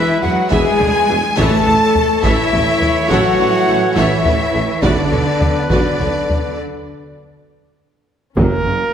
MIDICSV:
0, 0, Header, 1, 13, 480
1, 0, Start_track
1, 0, Key_signature, 3, "major"
1, 0, Tempo, 575816
1, 1152, Time_signature, 12, 3, 24, 8
1, 4031, Tempo, 588235
1, 7376, End_track
2, 0, Start_track
2, 0, Title_t, "Flute section"
2, 0, Program_c, 0, 73
2, 0, Note_on_c, 0, 76, 103
2, 177, Note_off_c, 0, 76, 0
2, 183, Note_on_c, 0, 78, 92
2, 424, Note_on_c, 0, 80, 110
2, 427, Note_off_c, 0, 78, 0
2, 1134, Note_off_c, 0, 80, 0
2, 1151, Note_on_c, 0, 81, 110
2, 1864, Note_on_c, 0, 76, 100
2, 1870, Note_off_c, 0, 81, 0
2, 2585, Note_off_c, 0, 76, 0
2, 2589, Note_on_c, 0, 78, 99
2, 3308, Note_off_c, 0, 78, 0
2, 3309, Note_on_c, 0, 76, 97
2, 4015, Note_off_c, 0, 76, 0
2, 4027, Note_on_c, 0, 74, 84
2, 4736, Note_off_c, 0, 74, 0
2, 4746, Note_on_c, 0, 74, 72
2, 5453, Note_off_c, 0, 74, 0
2, 7376, End_track
3, 0, Start_track
3, 0, Title_t, "Violin section"
3, 0, Program_c, 1, 48
3, 0, Note_on_c, 1, 76, 98
3, 188, Note_on_c, 1, 78, 77
3, 193, Note_off_c, 1, 76, 0
3, 425, Note_off_c, 1, 78, 0
3, 430, Note_on_c, 1, 80, 115
3, 1137, Note_off_c, 1, 80, 0
3, 1156, Note_on_c, 1, 81, 120
3, 1871, Note_on_c, 1, 76, 113
3, 1872, Note_off_c, 1, 81, 0
3, 2588, Note_off_c, 1, 76, 0
3, 2596, Note_on_c, 1, 78, 106
3, 3312, Note_off_c, 1, 78, 0
3, 3314, Note_on_c, 1, 76, 91
3, 4032, Note_off_c, 1, 76, 0
3, 4034, Note_on_c, 1, 74, 92
3, 4730, Note_off_c, 1, 74, 0
3, 4741, Note_on_c, 1, 74, 85
3, 5450, Note_off_c, 1, 74, 0
3, 7376, End_track
4, 0, Start_track
4, 0, Title_t, "Violin section"
4, 0, Program_c, 2, 48
4, 189, Note_on_c, 2, 71, 70
4, 193, Note_on_c, 2, 76, 74
4, 256, Note_off_c, 2, 71, 0
4, 259, Note_off_c, 2, 76, 0
4, 429, Note_on_c, 2, 71, 84
4, 433, Note_on_c, 2, 76, 99
4, 654, Note_off_c, 2, 71, 0
4, 656, Note_off_c, 2, 76, 0
4, 661, Note_on_c, 2, 74, 68
4, 666, Note_on_c, 2, 69, 86
4, 728, Note_off_c, 2, 74, 0
4, 733, Note_off_c, 2, 69, 0
4, 911, Note_on_c, 2, 71, 59
4, 911, Note_on_c, 2, 76, 66
4, 977, Note_off_c, 2, 71, 0
4, 977, Note_off_c, 2, 76, 0
4, 1141, Note_on_c, 2, 76, 97
4, 1142, Note_on_c, 2, 73, 107
4, 1369, Note_off_c, 2, 76, 0
4, 1370, Note_off_c, 2, 73, 0
4, 1377, Note_on_c, 2, 71, 56
4, 1377, Note_on_c, 2, 74, 59
4, 1443, Note_off_c, 2, 71, 0
4, 1444, Note_off_c, 2, 74, 0
4, 1868, Note_on_c, 2, 76, 87
4, 1869, Note_on_c, 2, 73, 90
4, 2092, Note_off_c, 2, 73, 0
4, 2092, Note_off_c, 2, 76, 0
4, 2109, Note_on_c, 2, 71, 63
4, 2109, Note_on_c, 2, 74, 66
4, 2175, Note_off_c, 2, 71, 0
4, 2176, Note_off_c, 2, 74, 0
4, 2590, Note_on_c, 2, 73, 90
4, 2590, Note_on_c, 2, 76, 96
4, 2812, Note_off_c, 2, 73, 0
4, 2812, Note_off_c, 2, 76, 0
4, 2830, Note_on_c, 2, 71, 58
4, 2835, Note_on_c, 2, 74, 60
4, 2897, Note_off_c, 2, 71, 0
4, 2902, Note_off_c, 2, 74, 0
4, 3071, Note_on_c, 2, 73, 60
4, 3071, Note_on_c, 2, 76, 72
4, 3137, Note_off_c, 2, 76, 0
4, 3138, Note_off_c, 2, 73, 0
4, 3318, Note_on_c, 2, 76, 86
4, 3320, Note_on_c, 2, 73, 98
4, 3536, Note_off_c, 2, 76, 0
4, 3537, Note_off_c, 2, 73, 0
4, 3550, Note_on_c, 2, 74, 73
4, 3553, Note_on_c, 2, 71, 67
4, 3616, Note_off_c, 2, 74, 0
4, 3619, Note_off_c, 2, 71, 0
4, 3786, Note_on_c, 2, 73, 56
4, 3791, Note_on_c, 2, 76, 53
4, 3853, Note_off_c, 2, 73, 0
4, 3858, Note_off_c, 2, 76, 0
4, 4020, Note_on_c, 2, 74, 91
4, 4023, Note_on_c, 2, 71, 95
4, 4245, Note_off_c, 2, 74, 0
4, 4246, Note_off_c, 2, 71, 0
4, 4256, Note_on_c, 2, 69, 51
4, 4256, Note_on_c, 2, 73, 47
4, 4321, Note_off_c, 2, 69, 0
4, 4321, Note_off_c, 2, 73, 0
4, 4737, Note_on_c, 2, 74, 77
4, 4738, Note_on_c, 2, 71, 75
4, 4962, Note_off_c, 2, 74, 0
4, 4963, Note_off_c, 2, 71, 0
4, 4981, Note_on_c, 2, 69, 52
4, 4981, Note_on_c, 2, 73, 43
4, 5046, Note_off_c, 2, 73, 0
4, 5047, Note_off_c, 2, 69, 0
4, 6916, Note_on_c, 2, 61, 65
4, 7376, Note_off_c, 2, 61, 0
4, 7376, End_track
5, 0, Start_track
5, 0, Title_t, "Trumpet"
5, 0, Program_c, 3, 56
5, 0, Note_on_c, 3, 71, 82
5, 887, Note_off_c, 3, 71, 0
5, 1154, Note_on_c, 3, 73, 84
5, 3997, Note_off_c, 3, 73, 0
5, 4026, Note_on_c, 3, 71, 76
5, 5431, Note_off_c, 3, 71, 0
5, 6921, Note_on_c, 3, 70, 83
5, 7376, Note_off_c, 3, 70, 0
5, 7376, End_track
6, 0, Start_track
6, 0, Title_t, "French horn section"
6, 0, Program_c, 4, 60
6, 0, Note_on_c, 4, 64, 120
6, 180, Note_on_c, 4, 66, 109
6, 183, Note_off_c, 4, 64, 0
6, 421, Note_off_c, 4, 66, 0
6, 429, Note_on_c, 4, 68, 116
6, 992, Note_off_c, 4, 68, 0
6, 1134, Note_on_c, 4, 69, 120
6, 1847, Note_off_c, 4, 69, 0
6, 1872, Note_on_c, 4, 64, 127
6, 2574, Note_on_c, 4, 66, 119
6, 2589, Note_off_c, 4, 64, 0
6, 3301, Note_off_c, 4, 66, 0
6, 3302, Note_on_c, 4, 64, 99
6, 4018, Note_on_c, 4, 62, 97
6, 4026, Note_off_c, 4, 64, 0
6, 4723, Note_off_c, 4, 62, 0
6, 4738, Note_on_c, 4, 62, 91
6, 5449, Note_off_c, 4, 62, 0
6, 6911, Note_on_c, 4, 58, 72
6, 7376, Note_off_c, 4, 58, 0
6, 7376, End_track
7, 0, Start_track
7, 0, Title_t, "Viola section"
7, 0, Program_c, 5, 48
7, 189, Note_on_c, 5, 68, 60
7, 191, Note_on_c, 5, 52, 68
7, 256, Note_off_c, 5, 68, 0
7, 257, Note_off_c, 5, 52, 0
7, 423, Note_on_c, 5, 52, 85
7, 424, Note_on_c, 5, 68, 88
7, 651, Note_off_c, 5, 52, 0
7, 651, Note_off_c, 5, 68, 0
7, 665, Note_on_c, 5, 52, 72
7, 665, Note_on_c, 5, 68, 76
7, 731, Note_off_c, 5, 52, 0
7, 732, Note_off_c, 5, 68, 0
7, 902, Note_on_c, 5, 52, 83
7, 904, Note_on_c, 5, 68, 79
7, 968, Note_off_c, 5, 52, 0
7, 971, Note_off_c, 5, 68, 0
7, 1149, Note_on_c, 5, 69, 93
7, 1150, Note_on_c, 5, 52, 116
7, 1374, Note_off_c, 5, 52, 0
7, 1374, Note_off_c, 5, 69, 0
7, 1390, Note_on_c, 5, 69, 65
7, 1391, Note_on_c, 5, 52, 70
7, 1457, Note_off_c, 5, 69, 0
7, 1458, Note_off_c, 5, 52, 0
7, 1862, Note_on_c, 5, 52, 88
7, 1864, Note_on_c, 5, 69, 89
7, 2089, Note_off_c, 5, 52, 0
7, 2089, Note_off_c, 5, 69, 0
7, 2107, Note_on_c, 5, 52, 65
7, 2108, Note_on_c, 5, 69, 68
7, 2173, Note_off_c, 5, 52, 0
7, 2175, Note_off_c, 5, 69, 0
7, 2577, Note_on_c, 5, 69, 90
7, 2579, Note_on_c, 5, 52, 78
7, 2805, Note_off_c, 5, 69, 0
7, 2806, Note_off_c, 5, 52, 0
7, 2826, Note_on_c, 5, 52, 63
7, 2826, Note_on_c, 5, 69, 51
7, 2892, Note_off_c, 5, 52, 0
7, 2893, Note_off_c, 5, 69, 0
7, 3063, Note_on_c, 5, 69, 55
7, 3065, Note_on_c, 5, 52, 60
7, 3130, Note_off_c, 5, 69, 0
7, 3131, Note_off_c, 5, 52, 0
7, 3300, Note_on_c, 5, 52, 96
7, 3301, Note_on_c, 5, 69, 88
7, 3527, Note_off_c, 5, 52, 0
7, 3527, Note_off_c, 5, 69, 0
7, 3540, Note_on_c, 5, 52, 66
7, 3541, Note_on_c, 5, 69, 68
7, 3607, Note_off_c, 5, 52, 0
7, 3608, Note_off_c, 5, 69, 0
7, 3779, Note_on_c, 5, 52, 61
7, 3782, Note_on_c, 5, 69, 70
7, 3846, Note_off_c, 5, 52, 0
7, 3849, Note_off_c, 5, 69, 0
7, 4025, Note_on_c, 5, 66, 93
7, 4027, Note_on_c, 5, 59, 77
7, 4248, Note_off_c, 5, 66, 0
7, 4249, Note_off_c, 5, 59, 0
7, 4270, Note_on_c, 5, 66, 54
7, 4272, Note_on_c, 5, 59, 48
7, 4335, Note_off_c, 5, 66, 0
7, 4337, Note_off_c, 5, 59, 0
7, 4738, Note_on_c, 5, 59, 75
7, 4738, Note_on_c, 5, 66, 75
7, 4963, Note_off_c, 5, 59, 0
7, 4963, Note_off_c, 5, 66, 0
7, 4978, Note_on_c, 5, 59, 43
7, 4979, Note_on_c, 5, 66, 49
7, 5044, Note_off_c, 5, 59, 0
7, 5044, Note_off_c, 5, 66, 0
7, 6917, Note_on_c, 5, 54, 58
7, 6918, Note_off_c, 5, 54, 0
7, 6918, Note_on_c, 5, 54, 77
7, 7137, Note_off_c, 5, 54, 0
7, 7150, Note_on_c, 5, 49, 49
7, 7215, Note_off_c, 5, 49, 0
7, 7376, End_track
8, 0, Start_track
8, 0, Title_t, "Trombone section"
8, 0, Program_c, 6, 61
8, 0, Note_on_c, 6, 52, 80
8, 0, Note_on_c, 6, 56, 79
8, 1111, Note_off_c, 6, 56, 0
8, 1113, Note_off_c, 6, 52, 0
8, 1149, Note_on_c, 6, 57, 95
8, 1152, Note_on_c, 6, 52, 103
8, 3889, Note_off_c, 6, 52, 0
8, 3889, Note_off_c, 6, 57, 0
8, 4031, Note_on_c, 6, 54, 83
8, 4033, Note_on_c, 6, 59, 79
8, 5434, Note_off_c, 6, 54, 0
8, 5435, Note_off_c, 6, 59, 0
8, 7376, End_track
9, 0, Start_track
9, 0, Title_t, "Cello section"
9, 0, Program_c, 7, 48
9, 0, Note_on_c, 7, 52, 96
9, 180, Note_off_c, 7, 52, 0
9, 191, Note_on_c, 7, 54, 97
9, 427, Note_off_c, 7, 54, 0
9, 434, Note_on_c, 7, 56, 104
9, 1154, Note_off_c, 7, 56, 0
9, 1154, Note_on_c, 7, 57, 110
9, 1857, Note_off_c, 7, 57, 0
9, 1875, Note_on_c, 7, 52, 93
9, 2590, Note_on_c, 7, 54, 89
9, 2591, Note_off_c, 7, 52, 0
9, 3294, Note_off_c, 7, 54, 0
9, 3307, Note_on_c, 7, 52, 88
9, 4029, Note_off_c, 7, 52, 0
9, 4030, Note_on_c, 7, 50, 95
9, 4731, Note_off_c, 7, 50, 0
9, 4741, Note_on_c, 7, 50, 75
9, 5450, Note_off_c, 7, 50, 0
9, 6923, Note_on_c, 7, 42, 74
9, 6988, Note_off_c, 7, 42, 0
9, 7156, Note_on_c, 7, 42, 46
9, 7221, Note_off_c, 7, 42, 0
9, 7376, End_track
10, 0, Start_track
10, 0, Title_t, "Timpani"
10, 0, Program_c, 8, 47
10, 1146, Note_on_c, 8, 45, 87
10, 1834, Note_off_c, 8, 45, 0
10, 7376, End_track
11, 0, Start_track
11, 0, Title_t, "Double bass section"
11, 0, Program_c, 10, 48
11, 193, Note_on_c, 10, 40, 67
11, 260, Note_off_c, 10, 40, 0
11, 427, Note_on_c, 10, 40, 88
11, 494, Note_off_c, 10, 40, 0
11, 672, Note_on_c, 10, 40, 67
11, 739, Note_off_c, 10, 40, 0
11, 907, Note_on_c, 10, 40, 66
11, 974, Note_off_c, 10, 40, 0
11, 1151, Note_on_c, 10, 33, 83
11, 1218, Note_off_c, 10, 33, 0
11, 1396, Note_on_c, 10, 33, 62
11, 1462, Note_off_c, 10, 33, 0
11, 1869, Note_on_c, 10, 33, 90
11, 1936, Note_off_c, 10, 33, 0
11, 2111, Note_on_c, 10, 33, 65
11, 2177, Note_off_c, 10, 33, 0
11, 2591, Note_on_c, 10, 33, 94
11, 2657, Note_off_c, 10, 33, 0
11, 2833, Note_on_c, 10, 33, 59
11, 2900, Note_off_c, 10, 33, 0
11, 3072, Note_on_c, 10, 33, 69
11, 3138, Note_off_c, 10, 33, 0
11, 3312, Note_on_c, 10, 33, 85
11, 3378, Note_off_c, 10, 33, 0
11, 3551, Note_on_c, 10, 33, 68
11, 3617, Note_off_c, 10, 33, 0
11, 3787, Note_on_c, 10, 33, 63
11, 3853, Note_off_c, 10, 33, 0
11, 4029, Note_on_c, 10, 35, 67
11, 4094, Note_off_c, 10, 35, 0
11, 4265, Note_on_c, 10, 35, 59
11, 4330, Note_off_c, 10, 35, 0
11, 4737, Note_on_c, 10, 35, 75
11, 4803, Note_off_c, 10, 35, 0
11, 4973, Note_on_c, 10, 35, 54
11, 5038, Note_off_c, 10, 35, 0
11, 6912, Note_on_c, 10, 30, 62
11, 6977, Note_off_c, 10, 30, 0
11, 7150, Note_on_c, 10, 30, 44
11, 7215, Note_off_c, 10, 30, 0
11, 7376, End_track
12, 0, Start_track
12, 0, Title_t, "Tuba"
12, 0, Program_c, 11, 58
12, 201, Note_on_c, 11, 28, 56
12, 295, Note_off_c, 11, 28, 0
12, 443, Note_on_c, 11, 28, 89
12, 537, Note_off_c, 11, 28, 0
12, 674, Note_on_c, 11, 28, 60
12, 770, Note_off_c, 11, 28, 0
12, 920, Note_on_c, 11, 28, 71
12, 1014, Note_off_c, 11, 28, 0
12, 1156, Note_on_c, 11, 33, 104
12, 1251, Note_off_c, 11, 33, 0
12, 1397, Note_on_c, 11, 33, 62
12, 1492, Note_off_c, 11, 33, 0
12, 1873, Note_on_c, 11, 33, 93
12, 1968, Note_off_c, 11, 33, 0
12, 2107, Note_on_c, 11, 33, 64
12, 2203, Note_off_c, 11, 33, 0
12, 2590, Note_on_c, 11, 33, 95
12, 2685, Note_off_c, 11, 33, 0
12, 2827, Note_on_c, 11, 33, 76
12, 2923, Note_off_c, 11, 33, 0
12, 3067, Note_on_c, 11, 33, 68
12, 3163, Note_off_c, 11, 33, 0
12, 3310, Note_on_c, 11, 33, 88
12, 3405, Note_off_c, 11, 33, 0
12, 3553, Note_on_c, 11, 33, 62
12, 3648, Note_off_c, 11, 33, 0
12, 3784, Note_on_c, 11, 33, 56
12, 3881, Note_off_c, 11, 33, 0
12, 4027, Note_on_c, 11, 35, 83
12, 4122, Note_off_c, 11, 35, 0
12, 4265, Note_on_c, 11, 35, 59
12, 4360, Note_off_c, 11, 35, 0
12, 4739, Note_on_c, 11, 35, 75
12, 4836, Note_off_c, 11, 35, 0
12, 4978, Note_on_c, 11, 35, 56
12, 5076, Note_off_c, 11, 35, 0
12, 6922, Note_on_c, 11, 30, 71
12, 7016, Note_off_c, 11, 30, 0
12, 7163, Note_on_c, 11, 30, 50
12, 7256, Note_off_c, 11, 30, 0
12, 7376, End_track
13, 0, Start_track
13, 0, Title_t, "Taiko and cinematic ensemble drums"
13, 431, Note_on_c, 9, 41, 71
13, 515, Note_off_c, 9, 41, 0
13, 670, Note_on_c, 9, 43, 60
13, 753, Note_off_c, 9, 43, 0
13, 1150, Note_on_c, 9, 41, 102
13, 1234, Note_off_c, 9, 41, 0
13, 1390, Note_on_c, 9, 43, 49
13, 1473, Note_off_c, 9, 43, 0
13, 1628, Note_on_c, 9, 43, 62
13, 1712, Note_off_c, 9, 43, 0
13, 1864, Note_on_c, 9, 41, 83
13, 1948, Note_off_c, 9, 41, 0
13, 2106, Note_on_c, 9, 43, 63
13, 2190, Note_off_c, 9, 43, 0
13, 2346, Note_on_c, 9, 43, 51
13, 2430, Note_off_c, 9, 43, 0
13, 2587, Note_on_c, 9, 41, 82
13, 2670, Note_off_c, 9, 41, 0
13, 3305, Note_on_c, 9, 41, 69
13, 3388, Note_off_c, 9, 41, 0
13, 3546, Note_on_c, 9, 43, 59
13, 3630, Note_off_c, 9, 43, 0
13, 4026, Note_on_c, 9, 41, 99
13, 4108, Note_off_c, 9, 41, 0
13, 4264, Note_on_c, 9, 43, 48
13, 4346, Note_off_c, 9, 43, 0
13, 4501, Note_on_c, 9, 43, 62
13, 4583, Note_off_c, 9, 43, 0
13, 4736, Note_on_c, 9, 41, 82
13, 4818, Note_off_c, 9, 41, 0
13, 4977, Note_on_c, 9, 43, 48
13, 5058, Note_off_c, 9, 43, 0
13, 5218, Note_on_c, 9, 43, 52
13, 5300, Note_off_c, 9, 43, 0
13, 6917, Note_on_c, 9, 41, 101
13, 6999, Note_off_c, 9, 41, 0
13, 7376, End_track
0, 0, End_of_file